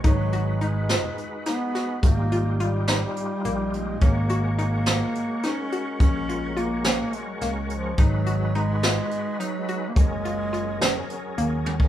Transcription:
<<
  \new Staff \with { instrumentName = "Tonewheel organ" } { \time 7/8 \key gis \dorian \tempo 4 = 106 <gis dis' fis' b'>2.~ <gis dis' fis' b'>8 | <g dis' eis' g'>2.~ <g dis' eis' g'>8 | <gis fis' ais' cis''>2.~ <gis fis' ais' cis''>8~ | <gis fis' ais' cis''>2.~ <gis fis' ais' cis''>8 |
<gis dis' fis' b'>2.~ <gis dis' fis' b'>8 | <fis cis' gis' ais'>2.~ <fis cis' gis' ais'>8 | }
  \new Staff \with { instrumentName = "Synth arpeggio sound" } { \time 7/8 \key gis \dorian dis'8 fis'8 dis'8 eis'4 dis'8 fis'8~ | fis'8 eis'8 eis'8 dis'4 ais4 | cis'8 fis'8 dis'8 eis'4 dis'8 fis'8~ | fis'8 eis'8 eis'8 cis'4 ais4 |
dis'8 fis'8 dis'8 eis'4 dis'8 fis'8~ | fis'8 eis'8 eis'8 cis'4 ais4 | }
  \new Staff \with { instrumentName = "Bass clarinet" } { \clef bass \time 7/8 \key gis \dorian fis4 gis4 r8 b4 | ais4 g8 g4. gis8 | ais4 ais4. cis'4 | cis'4 ais8 ais4 r8 eis8 |
fis4 gis4. fis8.~ fis32 ais32 | gis2~ gis8 r4 | }
  \new Staff \with { instrumentName = "Fingered electric bass" } { \clef bass \time 7/8 \key gis \dorian gis,,2 r4. | gis,,2 r8 ais,,4 | gis,,2 r4. | ais,,2 r8 cis,4 |
gis,,2 r4. | fis,,2 r8 dis,4 | }
  \new DrumStaff \with { instrumentName = "Drums" } \drummode { \time 7/8 <hh bd>8 hh8 hh8 <hh sn>8 hh8 <hh sn>8 <hh sn>8 | <hh bd>8 hh8 hh8 <hh sn>8 hh8 hh8 hh8 | <hh bd>8 hh8 hh8 <hh sn>8 hh8 <hh sn>8 hh8 | <hh bd>8 hh8 hh8 <hh sn>8 hh8 <hh sn>8 hh8 |
<hh bd>8 hh8 hh8 <hh sn>8 hh8 hh8 hh8 | <hh bd>8 hh8 hh8 <hh sn>8 hh8 hh8 tommh16 bd16 | }
>>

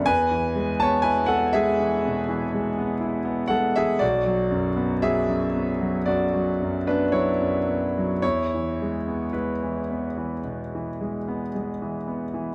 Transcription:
<<
  \new Staff \with { instrumentName = "Grand piano" } { \time 4/4 \key e \mixolydian \tempo 4 = 58 <b' gis''>8. <cis'' a''>16 <b' gis''>16 <a' fis''>16 <gis' e''>2 <a' fis''>16 <gis' e''>16 | <fis' d''>4 <gis' e''>4 <fis' d''>8. <d' b'>16 <e' cis''>4 | <e' cis''>4 <e' b'>2 r4 | }
  \new Staff \with { instrumentName = "Grand piano" } { \clef bass \time 4/4 \key e \mixolydian e,16 e16 gis16 b16 e'16 b16 gis16 e16 b,16 e16 gis16 b16 e'16 b16 gis16 e16 | b,,16 fis16 fis,16 b16 fis16 fis,16 b16 fis16 fis,16 fis16 fis,16 b16 fis16 fis,16 b16 fis16 | e,16 e16 gis16 b16 gis16 e16 b16 e16 b,16 e16 gis16 b16 gis16 e16 b16 e16 | }
>>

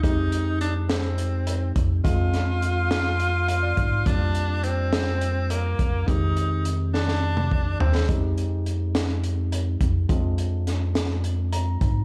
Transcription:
<<
  \new Staff \with { instrumentName = "Alto saxophone" } { \time 7/8 \key f \dorian \tempo 4 = 104 ees'4 d'8 c'4. r8 | f'2.~ f'8 | d'4 c'4. bes4 | ees'4 r8 d'4. c'8 |
r2. r8 | r2. r8 | }
  \new Staff \with { instrumentName = "Tine electric piano" } { \time 7/8 \key f \dorian << { r2. r8 | r2 r8 f''16 d''8. | r2. r8 | r2. r8 |
r2. r8 | r2 r8 bes''4 | } \\ { <aes c' ees' g'>2.~ <aes c' ees' g'>8 | <aes c' d' f'>2.~ <aes c' d' f'>8 | <g bes d' f'>2.~ <g bes d' f'>8 | <ees aes c' g'>2.~ <ees aes c' g'>8 |
<aes c' ees' g'>2.~ <aes c' ees' g'>8 | <aes c' d' f'>2.~ <aes c' d' f'>8 | } >> }
  \new Staff \with { instrumentName = "Analog synth bass" } { \clef bass \time 7/8 \key f \dorian f,2. f,8 | f,2. aes,8 | f,2. f,8 | f,2. ees,8 |
f,2. f,8 | f,2. aes,8 | }
  \new DrumStaff \with { instrumentName = "Drums" } \drummode { \time 7/8 <hh bd>8 hh8 hh8 <hh sn>8 hh8 hh8 <hh bd>8 | <hh bd>8 <hh sn>8 hh8 <hh sn>8 hh8 hh8 <hh bd>8 | <hh bd>8 hh8 hh8 <hh sn>8 hh8 hh8 <hh bd>8 | <hh bd>8 hh8 hh8 sn16 sn8 toml16 bd8 tomfh16 sn16 |
<hh bd>8 hh8 hh8 <hh sn>8 hh8 hh8 <hh bd>8 | <hh bd>8 hh8 <hh sn>8 <hh sn>8 hh8 hh8 <hh bd>8 | }
>>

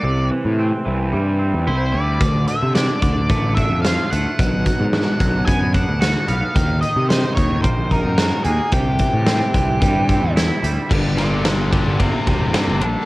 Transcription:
<<
  \new Staff \with { instrumentName = "Lead electric guitar" } { \time 4/4 \key g \dorian \tempo 4 = 110 d''8 r2 r8 c''8 d''8~ | d''8 e''8 d''8 d''4 e''8 f''8 fis''8~ | fis''2 aes''8 fis''8 fis''8 f''8~ | f''8 ees''8 c''8 cis''8 c''8 bes'4 aes'8 |
g'2. r4 | r8 <bes' d''>8 <bes' d''>8 <bes' d''>8 <g' c''>8 <g' c''>8 <g' c''>8 a'8 | }
  \new Staff \with { instrumentName = "Clean electric guitar" } { \time 4/4 \key g \dorian c8 e8 c'8 e8 g8 c'8 e'8 g8 | d8 d8 d'8 d8 a8 d'8 f'8 a8 | b,8 fis8 d'8 fis8 b8 d'8 fis'8 b8 | ees8 ees8 ees'8 ees8 bes8 ees'8 ges'8 bes8 |
c8 e8 c'8 e8 g8 c'8 e'8 g8 | g,8 bes8 d'8 g8 bes8 g8 bes8 d'8 | }
  \new Staff \with { instrumentName = "Distorted electric guitar" } { \clef bass \time 4/4 \key g \dorian r1 | r1 | r1 | r1 |
r1 | <g, d g>4. <g, d g>4. <g, d g>4 | }
  \new Staff \with { instrumentName = "Picked electric bass" } { \clef bass \time 4/4 \key g \dorian c,8 r16 a,8 r16 c,8 g,8. e,16 c,8 d,8 | d,8 r16 c8 r16 d,8 a,,8. f,8 r16 d,16 r16 | b,,8 r16 aes,8 r16 b,,8 fis,8. d,8 r16 b,,16 r16 | ees,8 r16 c8 r16 ees,8 bes,,8. ges,8 r16 ees,16 r16 |
c,8 r16 a,8 r16 c,8 g,8. e,8 r16 d,16 r16 | g,,4.~ g,,16 g,,8 r16 e,,8 g,16 g,,16 bes,,16 r16 | }
  \new DrumStaff \with { instrumentName = "Drums" } \drummode { \time 4/4 r4 r4 r4 r4 | <hh bd>8 hh8 <hh sn>8 <hh bd>8 <hh bd>8 <hh bd>8 <hh sn>8 hh8 | <hh bd>8 <hh bd>8 <hh sn>8 <hh bd>8 <hh bd>8 <hh bd>8 <hh sn>8 hh8 | <hh bd>8 hh8 <hh sn>8 <hh bd>8 <hh bd>8 <hh bd>8 <hh sn>8 hh8 |
<hh bd>8 <hh bd>8 <hh sn>8 <hh bd>8 <hh bd>8 <hh bd>8 <hh sn>8 hh8 | <cymc bd>8 <cymr sn>8 <cymr sn>8 <bd cymr>8 <bd cymr>8 <bd cymr>8 <cymr sn>8 cymr8 | }
>>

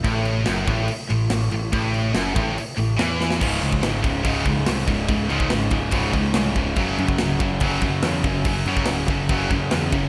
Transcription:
<<
  \new Staff \with { instrumentName = "Overdriven electric guitar" } { \clef bass \time 4/4 \key cis \minor \tempo 4 = 143 a,4 fis,8 a,8 r8 a,8 a,8 a,8 | a,4 fis,8 a,8 r8 a,8 e4 | <cis, gis, cis>8 <cis, gis, cis>8 <cis, gis, cis>8 <cis, gis, cis>8 <cis, gis, cis>8 <cis, gis, cis>8 <cis, gis, cis>8 <cis, gis, cis>8 | <cis, gis, cis>8 <cis, gis, cis>8 <cis, gis, cis>8 <cis, gis, cis>8 <cis, gis, cis>8 <cis, gis, cis>8 <cis, gis, cis>8 <cis, gis, cis>8 |
<fis, cis fis>8 <fis, cis fis>8 <fis, cis fis>8 <fis, cis fis>8 <fis, cis fis>8 <fis, cis fis>8 <fis, cis fis>8 <fis, cis fis>8 | <fis, cis fis>8 <fis, cis fis>8 <fis, cis fis>8 <fis, cis fis>8 <fis, cis fis>8 <fis, cis fis>8 <fis, cis fis>8 <fis, cis fis>8 | }
  \new Staff \with { instrumentName = "Distorted electric guitar" } { \clef bass \time 4/4 \key cis \minor a,4 fis,8 a,8 r8 a,8 a,8 a,8 | a,4 fis,8 a,8 r8 a,8 e4 | <cis, gis, cis>8 <cis, gis,>8 <cis, gis,>8 <cis, gis,>8 <cis, gis, cis>8 <cis, gis,>8 <cis, gis,>8 <cis, gis,>8 | <cis, gis,>8 <cis, gis, cis>8 <cis, gis,>8 <cis, gis,>8 <cis, gis, cis>8 <cis, gis,>8 <cis, gis,>8 <cis, gis,>8 |
<fis, cis fis>8 <fis, cis>8 <fis, cis>8 <fis, cis>8 <fis, cis fis>8 <fis, cis>8 <fis, cis>8 <fis, cis>8 | <fis, cis>8 <fis, cis fis>8 <fis, cis>8 <fis, cis>8 <fis, cis fis>8 <fis, cis>8 <fis, cis>8 <fis, cis>8 | }
  \new Staff \with { instrumentName = "Distorted electric guitar" } { \clef bass \time 4/4 \key cis \minor a,4 fis,8 a,8 r8 a,8 a,8 a,8 | a,4 fis,8 a,8 r8 a,8 e4 | <cis, gis, cis>8 <cis, gis,>8 <cis, gis,>8 <cis, gis,>8 <cis, gis, cis>8 <cis, gis,>8 <cis, gis,>8 <cis, gis,>8 | <cis, gis,>8 <cis, gis, cis>8 <cis, gis,>8 <cis, gis,>8 <cis, gis, cis>8 <cis, gis,>8 <cis, gis,>8 <cis, gis,>8 |
<fis, cis fis>8 <fis, cis>8 <fis, cis>8 <fis, cis>8 <fis, cis fis>8 <fis, cis>8 <fis, cis>8 <fis, cis>8 | <fis, cis>8 <fis, cis fis>8 <fis, cis>8 <fis, cis>8 <fis, cis fis>8 <fis, cis>8 <fis, cis>8 <fis, cis>8 | }
  \new Staff \with { instrumentName = "Picked electric bass" } { \clef bass \time 4/4 \key cis \minor a,,4 fis,,8 a,,8 r8 a,,8 a,,8 a,,8 | a,,4 fis,,8 a,,8 r8 a,,8 e,4 | cis,,8 cis,8 gis,,8 cis,,8 cis,,8 cis,8 bis,,8 cis,,8 | cis,,8 cis,8 gis,,8 cis,,8 cis,,8 cis,8 bis,,8 cis,,8 |
fis,,8 fis,8 cis,,8 fis,,8 fis,,8 fis,8 e,8 fis,,8 | fis,,8 fis,8 cis,,8 fis,,8 fis,,8 fis,8 e,8 fis,,8 | }
  \new DrumStaff \with { instrumentName = "Drums" } \drummode { \time 4/4 <cymc bd>8 cymc8 <cymc sn>8 <cymc bd>8 cymc8 cymc8 <cymc sn>8 cymc8 | <cymc bd>8 cymc8 <cymc sn>8 <cymc bd>8 cymc8 cymc8 <cymc sn>8 sn16 sn16 | <cymc bd>8 cymc16 bd16 <cymc sn>8 <cymc bd>8 <cymc bd>8 <cymc bd>8 <cymc sn>8 <cymc bd>8 | <cymc bd>8 cymc16 bd16 <cymc sn>8 <cymc bd>8 <cymc bd>8 <cymc bd>8 <cymc sn>8 <cymc bd>8 |
<cymc bd>8 cymc16 bd16 <cymc sn>8 <cymc bd>8 <cymc bd>8 <cymc bd>8 <cymc sn>8 <cymc bd>8 | <cymc bd>8 cymc16 bd16 <cymc sn>8 <cymc bd>8 <cymc bd>8 <cymc bd>8 <cymc sn>8 <cymc bd>8 | }
>>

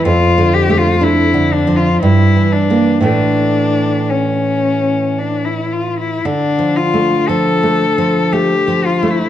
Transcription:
<<
  \new Staff \with { instrumentName = "Cello" } { \time 3/4 \key d \minor \tempo 4 = 58 f'8 g'16 f'16 e'8 d'16 f'16 e'8 d'8 | d'4 cis'4 d'16 e'16 f'16 e'16 | d'8 f'8 a'4 g'8 f'16 e'16 | }
  \new Staff \with { instrumentName = "Nylon-string guitar" } { \clef bass \time 3/4 \key d \minor \tuplet 3/2 { f,8 d8 a8 d'8 d8 f8 g,8 e8 <e bes>8 } | <a, e a>2. | \tuplet 3/2 { d8 f8 a8 f8 a8 f8 a8 f8 a8 } | }
>>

